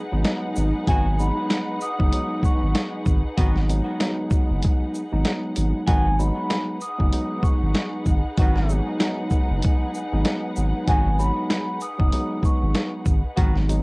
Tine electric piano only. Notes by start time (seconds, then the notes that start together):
0.12 F#3 G#3 B3 D#4
0.25 F#3 G#3 B3 D#4
0.56 F#3 G#3 B3 D#4
0.88 F#3 G#3 B3 D#4
1.19 F#3 G#3 B3 D#4
1.98 F#3 G#3 B3 D#4
2.13 F#3 G#3 B3 D#4
3.38 F#3 G#3 B3 D#4
3.69 F#3 G#3 B3 D#4
4.00 F#3 G#3 B3 D#4
5.12 F#3 G#3 B3 D#4
5.25 F#3 G#3 B3 D#4
5.56 F#3 G#3 B3 D#4
5.88 F#3 G#3 B3 D#4
6.19 F#3 G#3 B3 D#4
6.98 F#3 G#3 B3 D#4
7.13 F#3 G#3 B3 D#4
8.38 F#3 G#3 B3 D#4
8.69 F#3 G#3 B3 D#4
9.00 F#3 G#3 B3 D#4
10.12 F#3 G#3 B3 D#4
10.25 F#3 G#3 B3 D#4
10.56 F#3 G#3 B3 D#4
10.88 F#3 G#3 B3 D#4
11.19 F#3 G#3 B3 D#4
11.98 F#3 G#3 B3 D#4
12.13 F#3 G#3 B3 D#4
13.38 F#3 G#3 B3 D#4
13.69 F#3 G#3 B3 D#4